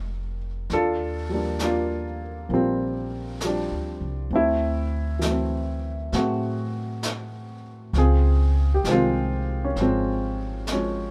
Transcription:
Already playing: upright bass F1, grand piano G#3 A#3 C4 D4 G4
0.70 upright bass D#2, grand piano D4 A4, brush sweep, snare
0.74 grand piano F4
1.29 grand piano F3 G3 A#3
1.34 grand piano D4
1.59 grand piano D4, snare, hi-hat pedal
1.63 grand piano A#3 F4
2.49 upright bass A#1, grand piano A#3 C4 F4, brush sweep
2.53 grand piano F3 G3 C4
3.40 grand piano F3, snare, hi-hat pedal
3.45 grand piano G3 D4
3.71 upright bass D2
4.01 upright bass C2
4.31 upright bass D2, grand piano A3 C4, brush sweep
4.36 grand piano E4
5.19 grand piano E3 F#3, snare, hi-hat pedal
5.26 grand piano A3 C4
6.12 upright bass A2, grand piano F#3 A3 C4 F#4 G#4, brush sweep, snare
7.03 snare, hi-hat pedal
7.93 upright bass C#2, grand piano C4 F4, brush sweep, snare
7.98 grand piano G#4
8.74 grand piano G4
8.84 upright bass C2, grand piano D#3 F3 G#3, snare, hi-hat pedal
8.89 grand piano G#3 C4 F4 C5
9.65 grand piano C#4
9.76 upright bass G#1, brush sweep, snare
9.81 grand piano F3 G#3 C4
10.67 snare, hi-hat pedal
10.72 grand piano F3 G#3 C#4

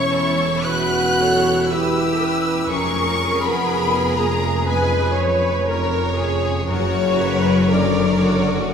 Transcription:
Already playing: double bass section E1, harp E2 G3 B4, cello section E2, french horn section C#4, violin section E4 C#5 C#6, viola section C#5
0.10 harp C#4, violin section A4
0.65 harp E2, french horn section F#4, violin section B4 F#6, viola section B4
1.19 harp G3, viola section A4, violin section C#5
1.70 french horn section E4, violin section G4 B4 E6, viola section G4, harp B4
2.20 harp C#4, viola section B4
2.68 double bass section F1, cello section F2, harp F2, french horn section C#4, violin section G#4 A#4 C#6, viola section A#4
3.19 harp G#3
3.43 french horn section B3, violin section B5
3.68 viola section G#4, harp B4
4.17 french horn section A#3, harp C#4, violin section A#5
4.67 harp F2, french horn section G#3, violin section G#4 B4 G#5, viola section B4
5.17 harp G#3, violin section B4, viola section C#5
5.68 viola section A#4, violin section A#4 C#5, harp B4
6.19 harp C#4, viola section G#4, violin section G#4
6.69 double bass section F#1, cello section F#2, harp F#2, french horn section C#3, viola section F#4, violin section F#4 A#4 C#5
7.20 harp F#3, violin section A#4, viola section B4
7.70 french horn section D3, violin section A#4 C#5 D5, viola section A#4, harp A#4
8.23 violin section F#4, harp F#4

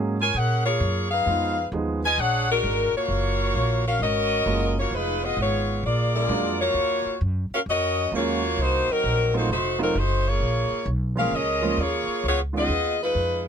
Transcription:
Already playing: upright bass G#2, grand piano F#3 G#3 A#3 C#4 G#4
0.21 saxophone section F4 A#4 C#5 G#5
0.34 upright bass A#2, saxophone section C#4 G#4 A#4 F#5
0.66 saxophone section A#3 F4 G#4 C#5
0.80 upright bass F#2
1.11 saxophone section D#4 G#4 B4 F5
1.26 upright bass F2, grand piano F3 G#3 B3 D#4 F4
1.72 upright bass D#2, grand piano F3 G#3 B3 D#4 G#4
2.04 saxophone section F4 B4 D#5 G#5
2.18 upright bass A#1, saxophone section D4 G#4 C#5 F#5
2.51 saxophone section G#3 D4 F#4 A#4
2.63 upright bass G#1
2.93 saxophone section F4 F#4 C#5, muted upright bass stroke
2.97 saxophone section A#3
3.08 upright bass F#1
3.55 upright bass A#1
3.87 saxophone section C#4 F#4 A#4 F5
4.00 upright bass G#1, saxophone section C#4 F#4 A#4 D#5
4.46 upright bass F#1, grand piano F#3 G#3 A#3 C#4 F4
4.80 saxophone section A#3 F4 F#4 C#5
4.91 upright bass F1, saxophone section G#3 D#4 F4
4.95 saxophone section B4
5.24 saxophone section B3 F4 G#4 D#5
5.37 upright bass G#1, saxophone section B3
5.41 saxophone section F4 G#4 C#5
5.83 upright bass A#1, saxophone section A#3 F4 G#4 D5
6.14 saxophone section G#3 D4 F4 A#4
6.29 upright bass F2, grand piano F#3 G#3 A#3 D4 F4
6.60 saxophone section A#3 F4 F#4 C#5
6.74 upright bass D#2
7.05 muted upright bass stroke
7.21 upright bass F#2
7.51 saxophone section C#4 F#4 A#4 F5, muted upright bass stroke
7.66 upright bass F2, saxophone section C#4 F#4 A#4
7.70 saxophone section D#5
8.12 upright bass D#2, grand piano F#3 G#3 A#3 C#4 F4, saxophone section A#3 F#4 C#5
8.16 saxophone section F4
8.57 upright bass C2
8.62 saxophone section A#3 D#4 F#4 C5
8.88 saxophone section F#3 C4 D#4 A#4, muted upright bass stroke
9.04 upright bass A#1
9.34 grand piano F#3 A3 C4 D#4 F4, saxophone section A#3 D#4 F#4 C5
9.49 upright bass F1, saxophone section A3 D#4 F#4 C5
9.78 grand piano F#3 A3 C4 D#4 F4
9.83 saxophone section F#3 C4 D#4 A#4
9.95 upright bass F#1, saxophone section A3 D#4 F#4 C5
10.28 saxophone section A#3 F4 G#4 C#5
10.40 upright bass A#1
10.71 muted upright bass stroke
10.86 upright bass B1
11.16 grand piano F3 G#3 A#3 C#4 F4, saxophone section C#4 G#4 A#4 F5
11.31 upright bass C#2, saxophone section G#4 D#5
11.35 saxophone section C#4 A#4
11.62 grand piano F3 G#3 A#3 C#4 F4
11.77 upright bass D#2, saxophone section F4 G#4
11.81 saxophone section A#3 C#5
12.07 muted upright bass stroke
12.24 upright bass C#2
12.28 saxophone section B3 F4 G#4 C#5
12.53 grand piano D#3 G#3 B3 C#4 F4
12.57 saxophone section B3 F4 G#4 D#5
12.68 upright bass D#2
13.03 saxophone section G#3 D#4 F4 B4
13.15 upright bass F2

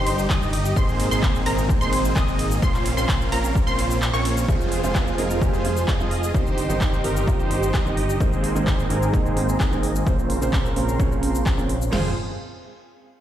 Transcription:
Already playing: analog synth bass G1, analog synth pad G3 D#4, supersaw synth D#4 G4 C5, synth pluck C6
0.07 open hi-hat, ride
0.19 shaker
0.30 analog synth bass G1, supersaw synth D#4 G4 D#5, synth pluck D#6, kick, clap, shaker
0.42 shaker
0.53 open hi-hat, ride
0.65 shaker
0.76 analog synth bass G#1, analog synth pad A#2 G#3 C4, supersaw synth A#3 C4 D#4 G#4 C5, synth pluck C6, kick, shaker
0.89 shaker
1.00 open hi-hat, ride
1.11 analog synth bass G#1, supersaw synth A#3 C4 D#4 G#4 C5, synth pluck C6, shaker
1.23 kick, clap, shaker
1.35 shaker
1.46 analog synth bass G#1, supersaw synth A#3 C4 D#4 G#4 A#4, synth pluck A#5, open hi-hat, ride
1.58 shaker
1.69 kick, shaker
1.81 analog synth bass G#1, supersaw synth A#3 C4 D#4 G#4 C5, synth pluck C6, shaker
1.93 open hi-hat, ride
2.05 shaker
2.16 analog synth bass G#1, supersaw synth A#3 C4 D#4 G#4 D#5, synth pluck D#6, kick, clap, shaker
2.28 shaker
2.39 open hi-hat, ride
2.51 shaker
2.62 analog synth bass A#1, analog synth pad A#3, supersaw synth A#3 C4 C#4 F4 C5, synth pluck C6, kick, shaker
2.74 clap, shaker
2.86 open hi-hat, ride
2.97 analog synth bass A#1, supersaw synth A#3 C4 C#4 F4 C5, synth pluck C6, shaker
3.09 kick, clap, shaker
3.21 shaker
3.32 analog synth bass A#1, supersaw synth A#3 C4 C#4 F4 A#4, synth pluck A#5, open hi-hat, ride
3.44 shaker
3.55 kick, shaker
3.67 analog synth bass A#1, supersaw synth A#3 C4 C#4 F4 C5, synth pluck C6, shaker
3.79 open hi-hat, ride
3.91 shaker
4.02 clap, shaker
4.13 analog synth bass A#1, supersaw synth A#3 C4 C#4 F4 C#5, synth pluck C#6, shaker
4.25 open hi-hat, ride
4.37 shaker
4.48 analog synth bass F1, felt piano F3 G#3 C4 F4, analog synth pad F4 C5 G#5, supersaw synth F4 G#4 C5, kick, downlifter, shaker
4.61 shaker
4.72 open hi-hat
4.83 analog synth bass F1, felt piano F3 G#3 C4 F4, supersaw synth F4 G#4 C5, shaker
4.95 kick, clap, shaker
5.07 shaker
5.18 analog synth bass F1, felt piano F3 G#3 C4 D#4, supersaw synth F4 G#4 A#4, open hi-hat
5.31 shaker
5.41 felt piano F3 G#3 C4 G4, kick, shaker
5.53 analog synth bass F1, supersaw synth F4 G#4 C5, shaker
5.64 felt piano F3 G#3 C4 F4, open hi-hat
5.77 shaker
5.88 analog synth bass F1, supersaw synth F4 G#4 D#5, kick, clap, shaker
5.99 felt piano F3 G#3 C4 F4, shaker
6.11 open hi-hat
6.24 shaker
6.34 analog synth bass G1, felt piano D#3 G3 C4 D#4, supersaw synth D#4 G4 C5, analog synth pad G4 D#5 C6, kick, shaker
6.47 shaker
6.58 open hi-hat
6.69 analog synth bass G1, felt piano D#3 G3 C4 D#4, supersaw synth D#4 G4 C5, shaker
6.81 kick, clap, shaker
6.93 shaker
7.04 analog synth bass G1, felt piano D#3 G3 C4 D#4, supersaw synth D#4 G4 A#4, open hi-hat
7.17 shaker
7.27 felt piano D#3 G3 C4 F4, kick, shaker
7.39 analog synth bass G1, supersaw synth D#4 G4 C5, shaker
7.50 felt piano D#3 G3 C4 D#4, open hi-hat
7.63 shaker
7.74 analog synth bass G1, supersaw synth D#4 G4 D#5, kick, clap, shaker
7.85 felt piano D#3 G3 C4 D#4, shaker
7.97 open hi-hat
8.10 shaker
8.20 analog synth bass G#1, felt piano D#3 G#3 A#3 C4, supersaw synth A#3 C4 D#4 G#4 C5, analog synth pad G#4 C5 A#5, kick, shaker
8.33 shaker
8.44 open hi-hat
8.55 analog synth bass G#1, felt piano D#3 G#3 A#3 C4, supersaw synth A#3 C4 D#4 G#4 C5, shaker
8.67 kick, clap, shaker
8.79 shaker
8.90 analog synth bass G#1, felt piano D#3 G#3 A#3 C4, supersaw synth A#3 C4 D#4 G#4 A#4, open hi-hat
9.03 shaker
9.13 felt piano D#3 G#3 A#3 D#4, kick, shaker
9.25 analog synth bass G#1, supersaw synth A#3 C4 D#4 G#4 C5, shaker
9.36 felt piano D#3 G#3 A#3 C4, open hi-hat
9.49 shaker
9.60 analog synth bass G#1, supersaw synth A#3 C4 D#4 G#4 D#5, kick, clap, shaker
9.71 felt piano D#3 G#3 A#3 C4, shaker
9.83 open hi-hat
9.96 shaker
10.06 analog synth bass A#1, felt piano C#3 F3 A#3 C5, supersaw synth A#3 C4 C#4 F4 C5, analog synth pad A#4 C6, kick, shaker
10.19 shaker
10.30 open hi-hat
10.41 analog synth bass A#1, felt piano C#3 F3 A#3 C5, supersaw synth A#3 C4 C#4 F4 C5, shaker
10.53 kick, clap, shaker
10.65 shaker
10.76 analog synth bass A#1, felt piano C#3 F3 A#3 C4, supersaw synth A#3 C4 C#4 F4 A#4, open hi-hat
10.89 shaker
10.99 felt piano C#3 F3 A#3 C#4, kick, shaker
11.11 analog synth bass A#1, supersaw synth A#3 C4 C#4 F4 C5, shaker
11.22 felt piano C#3 F3 A#3 C4, open hi-hat
11.35 shaker
11.46 kick, clap, shaker
11.57 analog synth bass A#1, felt piano C#3 F3 A#3 C4, supersaw synth A#3 C4 C#4 F4 C#5, shaker
11.69 open hi-hat
11.82 shaker
11.91 analog synth bass F1, felt piano F3 G#3 C4 F4, analog synth pad C4 G#4 F5, supersaw synth F4 G#4 C5, snare, floor tom, crash

